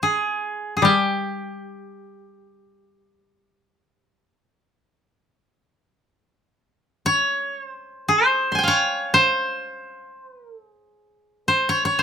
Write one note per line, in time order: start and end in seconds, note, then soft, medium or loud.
0.00 0.76 G#4 soft
0.00 0.98 C5 medium
0.77 0.91 G#4 soft
0.82 4.20 G3 soft
0.82 3.89 G4 soft
7.06 7.64 C#5 medium
7.64 8.09 C5 medium
8.09 8.74 C5 medium
8.52 9.85 G#5 soft
8.52 8.74 C6 soft
8.59 9.93 G5 soft
8.64 10.08 F5 soft
8.68 9.20 C#5 medium
9.14 10.25 C5 medium
10.25 10.40 B4 medium
10.40 10.54 A#4 medium
10.54 10.68 A4 medium
10.68 11.44 G#4 medium
11.48 11.75 C5 medium
11.69 11.85 C#5 medium
11.85 12.03 C#5 medium
11.99 12.03 C5 soft